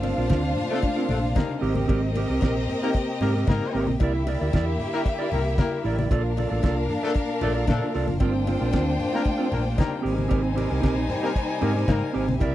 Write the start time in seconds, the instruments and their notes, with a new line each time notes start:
Already playing: fingered electric bass G1, string section C3 A3 A#3 F4, violin section D4 C5 F5
0.02 clean electric guitar C4 F4 A#4, open hi-hat, cowbell, muted conga
0.17 fingered electric bass A#1, clean electric guitar C4 F4 A#4
0.29 fingered electric bass D2, clean electric guitar C4 F4 A#4, kick, snare, closed hi-hat, cowbell, high conga
0.44 muted clean electric guitar stroke
0.56 muted clean electric guitar stroke, open hi-hat, low conga
0.70 horn section F3 A3 D4 A4, clean electric guitar C4 F4 C5
0.82 kick, closed hi-hat, cowbell
0.96 clean electric guitar C4 F4 A#4
1.09 fingered electric bass A#1, horn section F3 A3 D4 A4, muted clean electric guitar stroke, open hi-hat, muted conga, low conga
1.24 muted clean electric guitar stroke, snare
1.35 horn section G3 A#3 D#4 A#4, muted clean electric guitar stroke, kick, snare, closed hi-hat, cowbell, high conga
1.49 muted clean electric guitar stroke
1.61 fingered electric bass G#1, clean electric guitar C4 G4 A#4, violin section C4 A#4 D#5, string section G4, open hi-hat
1.75 clean electric guitar C4 G4 A#4, high conga
1.88 fingered electric bass G#1, clean electric guitar C4 G4 A#4, kick, closed hi-hat, cowbell, muted conga
2.03 muted clean electric guitar stroke
2.15 clean electric guitar C4 G4 A#4, open hi-hat, cowbell, muted conga
2.30 fingered electric bass C2, clean electric guitar C4 G4 A#4
2.41 fingered electric bass A#1, clean electric guitar C4 G4 A#4, kick, snare, closed hi-hat, cowbell, high conga
2.57 muted clean electric guitar stroke
2.68 muted clean electric guitar stroke, open hi-hat, low conga
2.82 horn section G3 A#3 D#4 A#4, clean electric guitar C4 G4 C5
2.94 muted clean electric guitar stroke, kick, closed hi-hat, cowbell
3.10 muted clean electric guitar stroke
3.21 fingered electric bass G#2, horn section G3 A#3 D#4 A#4, clean electric guitar C4 G4 A#4, open hi-hat, muted conga, low conga
3.36 clean electric guitar C4 G4 A#4, snare
3.47 fingered electric bass G#2, horn section G3 A#3 D#4 A#4, muted clean electric guitar stroke, kick, snare, closed hi-hat, cowbell, high conga
3.62 muted clean electric guitar stroke
3.74 fingered electric bass G#1, clean electric guitar C4 G4 A#4, open hi-hat
3.87 fingered electric bass A#1, muted clean electric guitar stroke, high conga
4.00 fingered electric bass C2, string section D3 E4, violin section A#3 G4 E5, clean electric guitar E4 A#4 D5, kick, closed hi-hat, cowbell, muted conga
4.15 muted clean electric guitar stroke
4.27 clean electric guitar E4 A#4 D5, open hi-hat, cowbell, muted conga
4.41 fingered electric bass D2, clean electric guitar E4 A#4 D5
4.53 fingered electric bass E2, clean electric guitar E4 A#4 D5, kick, snare, closed hi-hat, cowbell, high conga
4.68 muted clean electric guitar stroke
4.80 muted clean electric guitar stroke, open hi-hat, low conga
4.93 horn section G3 A#3 E4 A#4, clean electric guitar E4 A#4 E5
5.06 muted clean electric guitar stroke, kick, closed hi-hat, cowbell
5.19 clean electric guitar E4 A#4 D5
5.32 fingered electric bass C2, horn section G3 A#3 E4 A#4, open hi-hat, muted conga, low conga
5.46 muted clean electric guitar stroke, snare
5.58 horn section G3 A#3 E4 A#4, muted clean electric guitar stroke, kick, snare, closed hi-hat, cowbell, high conga
5.72 muted clean electric guitar stroke
5.84 fingered electric bass A1, clean electric guitar E4 A#4 D5, open hi-hat
5.99 clean electric guitar E4 A#4 D5, high conga
6.11 fingered electric bass A#1, string section A#2 A#3 D4, violin section D4 A#4 F5, clean electric guitar F4 A4 D5, kick, closed hi-hat, cowbell
6.25 muted clean electric guitar stroke
6.37 clean electric guitar F4 A4 D5, open hi-hat, cowbell, muted conga
6.50 fingered electric bass A1, clean electric guitar F4 A4 D5
6.63 fingered electric bass C2, clean electric guitar F4 A4 D5, kick, snare, closed hi-hat, cowbell, high conga
6.77 muted clean electric guitar stroke
6.89 muted clean electric guitar stroke, open hi-hat, low conga
7.03 horn section F3 A3 D4 A4, clean electric guitar F4 A4 E5
7.14 muted clean electric guitar stroke, kick, closed hi-hat, cowbell
7.29 muted clean electric guitar stroke
7.41 fingered electric bass A#1, horn section F3 A3 D4 A4, clean electric guitar F4 A4 D5, open hi-hat, muted conga, low conga
7.55 clean electric guitar F4 A4 D5
7.67 fingered electric bass A#2, horn section F3 A3 D4 A4, kick, snare, closed hi-hat, cowbell, high conga
7.81 clean electric guitar F4 A4 D5
7.94 fingered electric bass C2, clean electric guitar F4 A4 D5, open hi-hat
8.08 fingered electric bass F1, muted clean electric guitar stroke, high conga
8.19 fingered electric bass G1, string section C3 A3 A#3 F4, clean electric guitar C4 F4 A#4, violin section D4 C5 G5, kick, closed hi-hat, cowbell, muted conga
8.35 muted clean electric guitar stroke
8.47 clean electric guitar C4 F4 A#4, open hi-hat, cowbell, muted conga
8.60 fingered electric bass A#1, clean electric guitar C4 F4 A#4
8.72 fingered electric bass D2, clean electric guitar C4 F4 A#4, kick, snare, closed hi-hat, cowbell, high conga
8.86 muted clean electric guitar stroke
8.98 muted clean electric guitar stroke, open hi-hat, low conga
9.12 horn section F3 A#3 D4 A#4, clean electric guitar C4 F4 C5
9.24 muted clean electric guitar stroke, kick, closed hi-hat, cowbell
9.38 clean electric guitar C4 F4 A#4
9.52 fingered electric bass A#1, horn section F3 A#3 D4 A#4, open hi-hat, muted conga, low conga
9.64 muted clean electric guitar stroke
9.77 horn section G3 A#3 D#4 A#4, muted clean electric guitar stroke, kick, snare, closed hi-hat, cowbell, high conga
9.91 muted clean electric guitar stroke
10.02 fingered electric bass G#1, string section G3, clean electric guitar C4 G4 A#4
10.06 violin section D#4 C5 G#5, open hi-hat
10.16 clean electric guitar C4 G4 A#4, high conga
10.28 fingered electric bass G#1, clean electric guitar C4 G4 A#4, kick, closed hi-hat, cowbell
10.44 muted clean electric guitar stroke
10.55 clean electric guitar C4 G4 A#4, open hi-hat, cowbell, muted conga
10.70 fingered electric bass C2, clean electric guitar C4 G4 A#4
10.82 fingered electric bass A#1, clean electric guitar C4 G4 A#4, kick, snare, closed hi-hat, cowbell, high conga
10.97 muted clean electric guitar stroke
11.08 muted clean electric guitar stroke, open hi-hat, low conga
11.22 horn section G3 A#3 D#4 A#4, clean electric guitar C4 G4 C5
11.35 muted clean electric guitar stroke, kick, closed hi-hat, cowbell
11.48 muted clean electric guitar stroke
11.61 fingered electric bass G#2, horn section G3 A#3 D#4 A#4, clean electric guitar C4 G4 A#4, open hi-hat, muted conga, low conga
11.76 clean electric guitar C4 G4 A#4, snare
11.88 fingered electric bass G#2, horn section G3 A#3 D#4 A#4, kick, snare, closed hi-hat, cowbell, high conga
12.02 muted clean electric guitar stroke
12.13 fingered electric bass G#1, clean electric guitar C4 G4 A#4, open hi-hat
12.28 fingered electric bass A#1, muted clean electric guitar stroke, high conga
12.39 fingered electric bass C2, string section D3 A#3 E4, violin section A#3 G4 E5, clean electric guitar E4 A#4 D5, kick, closed hi-hat, cowbell